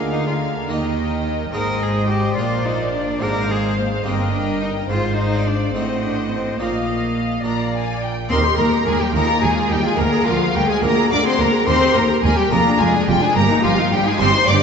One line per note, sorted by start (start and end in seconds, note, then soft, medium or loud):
0.00 0.68 D2 medium
0.00 0.65 D3 soft
0.00 0.67 D3 soft
0.00 0.65 G#3 soft
0.00 0.66 A#3 soft
0.00 0.66 F4 soft
0.00 1.53 A#4 soft
0.00 0.67 F5 soft
0.00 0.69 G#5 soft
0.12 0.26 D#4 medium
0.27 0.33 F4 medium
0.68 1.53 D#2 medium
0.68 1.53 D#3 medium
0.68 1.49 D#3 soft
0.68 1.50 A#3 soft
0.68 1.50 D#4 soft
0.68 1.53 D#5 soft
0.68 1.51 G5 soft
1.52 2.33 G#1 medium
1.52 2.33 G#2 medium
1.52 2.33 G#2 soft
1.52 2.33 G#3 soft
1.52 2.34 C4 soft
1.52 2.34 D#4 soft
1.52 1.84 A#4 medium
1.52 3.18 C5 medium
1.52 2.33 D#5 soft
1.52 2.33 G5 soft
1.82 2.08 G#4 medium
2.08 2.36 G4 medium
2.36 3.19 A#1 medium
2.36 3.19 A#2 medium
2.36 3.17 A#2 soft
2.36 3.18 A#3 soft
2.36 3.18 D4 soft
2.36 2.67 F4 medium
2.36 3.19 D5 medium
2.36 3.20 F5 soft
2.65 2.93 D#4 medium
2.93 3.24 D4 medium
3.21 4.05 G#1 medium
3.21 4.05 G#2 medium
3.21 4.01 G#2 soft
3.21 4.02 A#3 soft
3.21 4.02 D4 soft
3.21 3.52 A#4 medium
3.21 4.05 C5 medium
3.21 4.03 F5 soft
3.21 4.04 F5 medium
3.51 3.78 G#4 medium
3.78 3.86 A#3 medium
4.05 4.88 G1 medium
4.05 4.86 G2 soft
4.05 4.88 G2 medium
4.05 4.86 A#3 soft
4.05 4.32 C4 medium
4.05 4.86 D#4 soft
4.05 4.90 A#4 medium
4.05 4.90 D#5 medium
4.05 4.90 G5 medium
4.33 4.61 D4 medium
4.61 4.69 D#4 medium
4.89 5.70 G#1 medium
4.89 5.70 G#2 medium
4.89 5.71 G#2 soft
4.89 5.71 C4 soft
4.89 5.17 F4 medium
4.89 5.29 C5 medium
4.89 5.71 C5 soft
4.89 5.70 F5 medium
5.18 5.48 D#4 medium
5.33 5.75 D5 soft
5.47 5.74 D4 medium
5.74 6.58 A1 medium
5.74 6.58 A2 medium
5.74 6.56 A2 soft
5.74 6.05 C4 medium
5.74 6.56 C4 soft
5.74 6.56 D#4 soft
5.74 6.58 C5 soft
5.74 6.59 D#5 soft
5.74 6.60 F#5 soft
6.03 6.31 D4 medium
6.31 6.59 C4 medium
6.59 7.43 A#1 medium
6.59 7.43 A#2 medium
6.59 7.41 A#2 soft
6.59 7.44 A#3 medium
6.59 7.41 D#4 soft
6.59 7.42 F4 soft
6.59 7.45 D#5 soft
6.59 7.43 F5 soft
7.44 8.28 A#1 medium
7.44 8.26 A#2 soft
7.44 8.28 A#2 medium
7.44 8.26 D4 soft
7.44 8.27 F4 soft
7.44 8.10 D5 soft
7.44 8.09 F5 soft
7.44 7.71 A#5 soft
7.75 8.02 G#5 medium
8.02 8.30 G5 soft
8.29 8.38 D#2 medium
8.29 8.56 D#2 medium
8.29 9.11 A#3 medium
8.29 8.37 C4 medium
8.29 9.11 D#4 soft
8.29 8.44 A#4 medium
8.29 8.38 C5 medium
8.29 8.56 C6 medium
8.45 8.58 G4 medium
8.57 8.66 D#2 medium
8.57 8.84 D#2 medium
8.57 8.85 A#3 medium
8.57 8.85 A#4 medium
8.57 8.72 A#4 medium
8.57 8.86 A#5 medium
8.74 8.87 G4 medium
8.85 8.93 D#2 medium
8.85 8.94 D#2 medium
8.85 9.12 D#2 medium
8.85 8.92 G#3 medium
8.85 9.00 G#4 medium
8.85 9.00 A#4 medium
8.85 9.00 G#5 medium
9.00 9.07 G3 medium
9.00 9.14 G4 medium
9.00 9.15 G4 medium
9.00 9.15 G5 medium
9.13 9.22 D#2 medium
9.13 9.40 D#2 medium
9.13 9.96 G#3 soft
9.13 9.45 A#3 medium
9.13 9.96 C4 soft
9.13 9.28 D#4 medium
9.13 9.96 F4 soft
9.13 9.43 A#4 medium
9.13 9.42 A#5 loud
9.29 9.43 F4 medium
9.42 9.50 D#2 medium
9.42 9.68 D#2 medium
9.42 9.51 D#2 medium
9.42 9.74 G#3 medium
9.42 9.57 D#4 medium
9.42 9.71 G#4 medium
9.42 9.71 G#5 medium
9.58 9.71 F4 medium
9.70 9.78 D#2 medium
9.70 9.96 D#2 medium
9.70 9.87 G3 medium
9.70 9.84 D#4 medium
9.70 9.85 G4 medium
9.70 9.85 G5 medium
9.85 10.01 G#3 medium
9.85 9.99 F4 medium
9.85 9.99 G#4 medium
9.85 10.00 G#5 medium
9.98 10.06 D2 medium
9.98 10.24 D2 medium
9.98 10.07 D2 medium
9.98 10.29 A#3 medium
9.98 10.12 A#4 medium
9.98 10.28 A#4 medium
9.98 10.27 A#5 medium
10.12 10.27 G#4 medium
10.26 10.35 D2 medium
10.26 10.52 D2 medium
10.26 10.36 D2 medium
10.26 10.54 F3 medium
10.26 10.55 F4 medium
10.26 10.41 A#4 medium
10.26 10.55 F5 medium
10.41 10.55 G#4 medium
10.54 10.63 D2 medium
10.54 10.81 D2 medium
10.54 10.64 D2 medium
10.54 10.69 G3 medium
10.54 10.69 G4 medium
10.54 10.68 A#4 medium
10.54 10.69 G5 loud
10.69 10.82 G#3 medium
10.69 10.83 G#4 medium
10.69 10.84 G#5 medium
10.82 10.90 D2 medium
10.82 11.08 D2 medium
10.82 10.91 D2 medium
10.82 11.44 G#3 soft
10.82 11.13 A#3 medium
10.82 11.44 A#3 soft
10.82 11.44 F4 medium
10.82 10.97 A#4 medium
10.82 11.11 A#4 medium
10.82 11.11 A#5 loud
10.97 11.11 G#4 medium
11.11 11.36 D2 medium
11.11 11.20 D2 medium
11.11 11.25 D4 medium
11.11 11.24 A#4 medium
11.11 11.26 D5 medium
11.11 11.25 D6 medium
11.25 11.40 C4 medium
11.25 11.40 G#4 medium
11.25 11.41 C5 medium
11.25 11.40 C6 loud
11.38 11.64 D2 medium
11.38 11.47 D2 medium
11.38 11.66 A#3 medium
11.38 11.54 A#4 medium
11.38 11.68 A#4 medium
11.38 11.68 A#5 medium
11.54 11.68 G#4 medium
11.66 11.92 D#2 medium
11.66 11.76 D#2 medium
11.66 12.48 A#3 medium
11.66 11.97 C4 medium
11.66 12.48 G4 medium
11.66 11.81 A#4 medium
11.66 11.96 C5 medium
11.66 11.95 C6 loud
11.83 11.96 G4 medium
11.95 12.21 D#2 medium
11.95 12.03 D#2 medium
11.95 12.04 D#2 medium
11.95 12.23 A#3 medium
11.95 12.10 A#4 medium
11.95 12.24 A#4 medium
11.95 12.24 A#5 medium
12.11 12.24 G4 medium
12.22 12.48 D#2 medium
12.22 12.32 D#2 medium
12.22 12.29 G#3 medium
12.22 12.37 G#4 medium
12.22 12.38 A#4 medium
12.22 12.37 G#5 loud
12.37 12.51 G3 medium
12.37 12.51 G4 medium
12.37 12.53 G4 medium
12.37 12.52 G5 medium
12.51 12.60 F1 medium
12.51 12.77 F2 medium
12.51 12.60 F2 medium
12.51 12.82 A#3 medium
12.51 13.32 D4 medium
12.51 12.66 F4 medium
12.51 13.32 G#4 soft
12.51 12.60 A#4 medium
12.51 12.79 A#5 loud
12.68 12.81 D4 medium
12.79 12.88 F1 medium
12.79 13.05 F2 medium
12.79 12.88 F2 medium
12.79 13.10 G#3 medium
12.79 12.95 F4 medium
12.79 13.08 G#4 medium
12.79 13.08 G#5 medium
12.94 13.08 D4 medium
13.07 13.17 F1 medium
13.07 13.16 F2 medium
13.07 13.33 F2 medium
13.07 13.24 G3 medium
13.07 13.22 F4 medium
13.07 13.22 G4 medium
13.07 13.22 G5 loud
13.22 13.39 G#3 medium
13.22 13.37 D4 medium
13.22 13.36 G#4 medium
13.22 13.36 G#5 loud
13.35 13.45 G1 medium
13.35 13.43 G2 medium
13.35 13.61 G2 medium
13.35 13.66 A#3 medium
13.35 13.50 G4 medium
13.35 13.65 A#4 medium
13.35 13.63 A#5 loud
13.50 13.64 D#4 medium
13.63 13.73 G1 medium
13.63 13.89 G2 medium
13.63 13.71 G2 medium
13.63 13.92 F3 medium
13.63 13.91 F4 medium
13.63 13.78 G4 medium
13.63 13.92 F5 medium
13.79 13.93 D#4 medium
13.91 14.01 G1 medium
13.91 13.99 G2 medium
13.91 14.17 G2 medium
13.91 14.08 G3 medium
13.91 14.06 G4 medium
13.91 14.06 G5 loud
14.06 14.21 G#3 medium
14.06 14.21 D#4 medium
14.06 14.20 G#4 medium
14.06 14.20 G#5 loud
14.19 14.28 G1 medium
14.19 14.27 G2 medium
14.19 14.45 G2 medium
14.19 14.63 A#3 medium
14.19 14.29 C4 loud
14.19 14.63 D#4 medium
14.19 14.63 G4 medium
14.19 14.34 G4 medium
14.19 14.47 C5 loud
14.19 14.47 C6 loud
14.35 14.48 D#4 medium
14.47 14.56 G1 medium
14.47 14.55 G2 medium
14.47 14.63 G2 medium
14.47 14.63 D4 medium
14.47 14.61 G4 medium
14.47 14.63 D5 medium
14.47 14.63 D6 loud